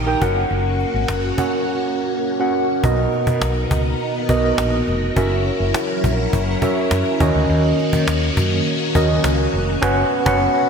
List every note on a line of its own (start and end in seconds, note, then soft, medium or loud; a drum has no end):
0.00 0.14 A#1 medium
0.00 0.19 D#3 medium
0.00 0.06 D#4 medium
0.00 0.17 D#4 medium
0.00 0.07 G4 medium
0.00 0.19 G4 medium
0.00 0.07 A#4 medium
0.00 0.19 A#4 medium
0.00 0.22 F#5 medium
0.00 0.08 G5 medium
0.06 0.21 D#4 medium
0.06 0.21 G4 medium
0.06 0.21 A#4 medium
0.06 0.22 G5 medium
0.21 0.43 F#1 medium
0.21 2.81 A#3 medium
0.21 1.14 C#4 medium
0.21 2.81 C#4 medium
0.21 1.15 F#4 medium
0.21 2.81 F#4 medium
0.21 1.15 A#4 medium
0.21 1.15 F#5 medium
0.21 cajon bass medium
0.51 0.83 F#1 medium
0.51 cajon slap soft
0.80 cajon slap soft
0.94 1.05 G#1 medium
0.94 cajon slap soft
1.08 1.31 F#1 medium
1.08 cajon slap loud
1.38 2.16 C#4 medium
1.38 2.16 F#4 medium
1.38 2.17 A#4 medium
1.38 2.17 F#5 medium
1.38 cajon bass medium
2.39 2.73 C#4 medium
2.39 2.73 F#4 medium
2.39 2.74 A#4 medium
2.39 2.74 F#5 medium
2.83 3.05 B1 loud
2.83 3.67 B2 medium
2.83 3.73 B3 medium
2.83 5.14 B3 medium
2.83 5.14 D#4 medium
2.83 3.73 F#4 medium
2.83 3.73 A#4 medium
2.83 5.14 A#4 medium
2.83 3.74 D#5 medium
2.83 cajon bass loud
3.13 cajon slap soft
3.27 3.38 B2 medium
3.27 cajon bass medium
3.42 3.64 B1 medium
3.42 cajon slap loud
3.71 3.93 C#2 medium
3.71 cajon bass loud
4.00 cajon slap soft
4.29 4.51 B1 medium
4.29 4.96 B3 medium
4.29 4.96 F#4 medium
4.29 4.97 A#4 medium
4.29 4.97 D#5 medium
4.29 cajon bass medium
4.58 4.80 A#1 medium
4.58 cajon slap loud
4.87 5.09 F1 medium
4.87 cajon slap soft
5.16 5.49 F#1 loud
5.16 7.18 F#3 medium
5.16 6.06 C#4 medium
5.16 10.69 C#4 medium
5.16 7.18 E4 medium
5.16 6.06 F#4 medium
5.16 7.18 A#4 medium
5.16 6.06 A#4 medium
5.16 6.06 E5 medium
5.16 cajon bass loud
5.46 cajon slap soft
5.60 5.71 F#1 medium
5.74 cajon slap loud
6.04 6.26 A#1 medium
6.04 cajon bass medium
6.33 6.55 F#1 medium
6.33 cajon bass loud
6.62 7.19 C#4 medium
6.62 7.19 F#4 medium
6.62 7.20 A#4 medium
6.62 7.21 E5 medium
6.62 cajon bass medium
6.91 7.02 F#2 loud
6.91 cajon slap loud
7.20 7.31 D#2 loud
7.20 9.80 D#3 medium
7.20 8.04 D#3 medium
7.20 9.80 A#3 medium
7.20 8.13 C#4 medium
7.20 10.69 F#4 medium
7.20 8.14 F#4 medium
7.20 8.14 A#4 medium
7.20 8.14 D#5 medium
7.20 cajon bass medium
7.35 7.46 D2 medium
7.49 7.71 D#2 loud
7.49 cajon slap soft
7.79 cajon slap soft
7.93 8.04 D#3 loud
7.93 cajon bass medium
8.08 8.30 D#2 medium
8.08 cajon slap loud
8.37 8.59 F#2 medium
8.37 cajon bass medium
8.66 cajon slap soft
8.95 9.17 D#2 medium
8.95 9.62 C#4 medium
8.95 9.62 F#4 medium
8.95 9.63 A#4 medium
8.95 9.63 D#5 medium
8.95 cajon bass medium
9.24 9.46 C#2 medium
9.24 cajon slap loud
9.53 9.75 F1 medium
9.53 cajon slap soft
9.82 10.02 F#1 loud
9.82 10.69 B3 medium
9.82 10.02 C#4 loud
9.82 10.02 F#4 loud
9.82 10.02 B4 loud
9.82 10.03 F#5 loud
9.82 cajon bass loud
9.82 cajon slap loud
10.26 10.46 F#1 loud
10.26 10.46 C#4 loud
10.26 10.46 F#4 medium
10.26 10.46 B4 medium
10.26 10.46 F#5 loud
10.26 cajon bass loud
10.26 cajon slap loud